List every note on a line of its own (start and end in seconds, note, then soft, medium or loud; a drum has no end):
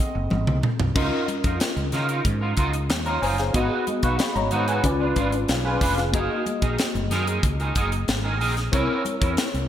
0.00 0.60 C4 medium
0.00 0.91 C4 medium
0.00 0.92 G#4 medium
0.00 0.60 A4 medium
0.00 0.92 A4 medium
0.00 0.60 D#5 medium
0.00 0.96 F#5 medium
0.15 0.29 F#1 medium
0.15 muted clean electric guitar stroke soft
0.30 0.45 G#1 medium
0.30 muted clean electric guitar stroke soft
0.30 high tom medium
0.30 muted conga soft
0.30 high conga medium
0.47 0.61 C2 medium
0.47 muted clean electric guitar stroke soft
0.47 mid tom medium
0.63 mid tom medium
0.63 muted conga soft
0.79 0.93 C2 medium
0.79 muted clean electric guitar stroke soft
0.79 floor tom medium
0.95 1.09 C#2 medium
0.95 2.54 C#4 medium
0.95 1.26 D#4 medium
0.95 2.54 F4 medium
0.95 1.26 F4 medium
0.95 2.54 A#4 medium
0.95 1.26 A#4 medium
0.95 2.55 D#5 medium
0.95 kick loud
0.95 crash medium
0.95 muted conga soft
1.28 muted clean electric guitar stroke soft
1.28 closed hi-hat medium
1.28 high conga medium
1.44 1.58 F2 medium
1.44 1.59 D#4 soft
1.44 1.59 F4 soft
1.44 1.58 A#4 medium
1.44 kick medium
1.44 closed hi-hat medium
1.60 muted clean electric guitar stroke soft
1.60 snare loud
1.60 closed hi-hat medium
1.76 1.90 C#2 medium
1.76 muted clean electric guitar stroke soft
1.76 closed hi-hat soft
1.76 high conga medium
1.92 2.20 C#3 medium
1.92 2.09 D#4 medium
1.92 2.09 F4 medium
1.92 2.08 A#4 medium
1.92 snare soft
1.92 closed hi-hat medium
1.92 muted conga soft
1.92 low conga medium
2.09 2.24 D#4 soft
2.09 2.24 F4 medium
2.09 2.23 A#4 medium
2.09 closed hi-hat medium
2.25 2.52 G#2 medium
2.25 muted clean electric guitar stroke soft
2.25 kick medium
2.25 closed hi-hat medium
2.25 low conga medium
2.41 2.56 D#4 soft
2.41 2.56 F4 medium
2.41 2.55 A#4 medium
2.57 2.89 C#2 medium
2.57 2.75 D#4 medium
2.57 2.73 F4 medium
2.57 2.72 A#4 medium
2.57 kick medium
2.57 closed hi-hat medium
2.57 muted conga soft
2.73 muted clean electric guitar stroke soft
2.73 closed hi-hat medium
2.89 3.17 D#2 medium
2.89 muted clean electric guitar stroke soft
2.89 snare loud
2.89 closed hi-hat medium
2.89 high conga medium
3.06 3.21 D#4 soft
3.06 3.20 F4 medium
3.06 3.20 A#4 medium
3.06 3.22 C#5 soft
3.06 3.21 A#5 medium
3.06 closed hi-hat soft
3.22 3.49 F#1 medium
3.22 3.40 D#4 medium
3.22 3.38 F4 medium
3.22 3.37 A#4 medium
3.22 3.38 C5 medium
3.22 3.38 G#5 medium
3.22 open hi-hat medium
3.22 muted conga soft
3.38 3.54 G#4 medium
3.38 3.69 F5 medium
3.38 muted clean electric guitar stroke soft
3.38 snare soft
3.38 closed hi-hat soft
3.53 3.68 G#1 medium
3.53 4.81 B3 medium
3.53 3.84 D#4 medium
3.53 4.81 F#4 medium
3.53 3.85 F#4 medium
3.53 4.82 G#4 medium
3.53 3.85 B4 medium
3.53 3.87 D#5 medium
3.53 kick loud
3.53 closed hi-hat medium
3.87 muted clean electric guitar stroke soft
3.87 closed hi-hat medium
3.87 muted conga soft
3.87 high conga medium
4.03 4.17 B1 medium
4.03 4.18 D#4 medium
4.03 4.18 F#4 medium
4.03 4.17 B4 medium
4.03 4.19 F5 soft
4.03 4.19 C#6 medium
4.03 kick medium
4.03 closed hi-hat medium
4.19 4.35 D#5 medium
4.19 4.35 B5 medium
4.19 muted clean electric guitar stroke soft
4.19 snare loud
4.19 closed hi-hat medium
4.35 4.49 G#1 medium
4.35 4.67 C#5 medium
4.35 4.66 A#5 medium
4.35 muted clean electric guitar stroke soft
4.35 closed hi-hat soft
4.35 high conga medium
4.51 4.79 G#2 medium
4.51 4.68 D#4 medium
4.51 4.67 F#4 medium
4.51 4.66 B4 medium
4.51 closed hi-hat medium
4.51 low conga medium
4.67 4.83 D#4 medium
4.67 4.82 F#4 medium
4.67 4.82 B4 medium
4.67 4.84 B4 soft
4.67 4.99 G#5 medium
4.67 closed hi-hat medium
4.83 5.11 C#2 loud
4.83 6.11 C#4 medium
4.83 6.11 F4 medium
4.83 5.48 B4 medium
4.83 5.48 D5 medium
4.83 muted clean electric guitar stroke soft
4.83 kick medium
4.83 closed hi-hat medium
4.83 low conga medium
5.00 5.15 D4 soft
5.00 5.15 F4 medium
5.00 5.14 B4 soft
5.16 5.44 G#1 medium
5.16 5.35 D4 medium
5.16 5.32 F4 medium
5.16 5.32 B4 medium
5.16 kick medium
5.16 closed hi-hat medium
5.16 muted conga soft
5.32 muted clean electric guitar stroke soft
5.32 closed hi-hat soft
5.48 5.76 B1 medium
5.48 5.65 G#4 soft
5.48 5.64 F5 medium
5.48 muted clean electric guitar stroke soft
5.48 snare loud
5.48 closed hi-hat medium
5.48 muted conga soft
5.48 high conga medium
5.65 5.80 D4 soft
5.65 5.80 F4 medium
5.65 5.79 B4 medium
5.65 5.96 B4 soft
5.65 5.96 G#5 medium
5.81 6.14 F1 loud
5.81 5.99 D4 medium
5.81 5.98 F4 medium
5.81 5.96 B4 medium
5.81 kick medium
5.81 open hi-hat medium
5.97 6.13 G#4 soft
5.97 6.28 F5 medium
5.97 muted clean electric guitar stroke soft
5.97 snare soft
5.97 closed hi-hat soft
6.12 6.27 F#1 medium
6.12 8.68 A#3 medium
6.12 6.44 D#4 medium
6.12 8.69 F#4 medium
6.12 8.69 G#4 medium
6.12 6.44 G#4 medium
6.12 6.44 A#4 medium
6.12 8.69 D#5 medium
6.12 kick loud
6.12 closed hi-hat medium
6.46 muted clean electric guitar stroke soft
6.46 closed hi-hat medium
6.46 muted conga soft
6.46 high conga medium
6.62 6.76 A#1 medium
6.62 6.77 D#4 soft
6.62 6.77 G#4 medium
6.62 6.76 A#4 medium
6.62 kick medium
6.62 closed hi-hat medium
6.79 muted clean electric guitar stroke soft
6.79 snare medium
6.79 closed hi-hat loud
6.95 7.08 F#1 loud
6.95 muted clean electric guitar stroke soft
6.95 closed hi-hat soft
6.95 high conga medium
7.11 7.38 F#2 loud
7.11 7.28 D#4 medium
7.11 7.27 G#4 medium
7.11 7.26 A#4 loud
7.11 snare soft
7.11 closed hi-hat medium
7.11 muted conga soft
7.11 low conga medium
7.27 7.42 D#4 medium
7.27 7.42 G#4 medium
7.27 7.41 A#4 medium
7.27 closed hi-hat medium
7.43 7.70 C#2 medium
7.43 muted clean electric guitar stroke soft
7.43 kick medium
7.43 closed hi-hat medium
7.43 low conga medium
7.60 7.75 D#4 soft
7.60 7.74 G#4 medium
7.60 7.74 A#4 medium
7.60 closed hi-hat soft
7.75 8.03 F#1 medium
7.75 7.94 D#4 medium
7.75 7.92 G#4 medium
7.75 7.91 A#4 medium
7.75 kick medium
7.75 closed hi-hat medium
7.75 muted conga soft
7.92 muted clean electric guitar stroke soft
7.92 closed hi-hat medium
8.08 8.40 G#1 medium
8.08 muted clean electric guitar stroke soft
8.08 snare loud
8.08 closed hi-hat medium
8.08 high conga medium
8.24 8.39 D#4 soft
8.24 8.39 G#4 medium
8.24 8.38 A#4 medium
8.40 8.68 A#1 medium
8.40 8.58 D#4 medium
8.40 8.56 G#4 medium
8.40 8.55 A#4 medium
8.40 open hi-hat medium
8.40 muted conga soft
8.57 muted clean electric guitar stroke soft
8.57 snare soft
8.57 closed hi-hat soft
8.72 8.87 C2 medium
8.72 9.68 C4 medium
8.72 9.02 C#4 medium
8.72 9.68 E4 medium
8.72 9.03 E4 medium
8.72 9.68 A#4 medium
8.72 9.03 A#4 medium
8.72 9.68 C#5 medium
8.72 kick loud
8.72 closed hi-hat medium
9.05 muted clean electric guitar stroke soft
9.05 closed hi-hat medium
9.05 muted conga soft
9.05 high conga medium
9.21 9.35 E2 medium
9.21 9.36 C#4 soft
9.21 9.36 E4 medium
9.21 9.35 A#4 medium
9.21 kick medium
9.21 closed hi-hat medium
9.37 muted clean electric guitar stroke soft
9.37 snare loud
9.37 closed hi-hat medium
9.54 9.67 C2 medium
9.54 muted clean electric guitar stroke medium
9.54 closed hi-hat soft
9.54 high conga medium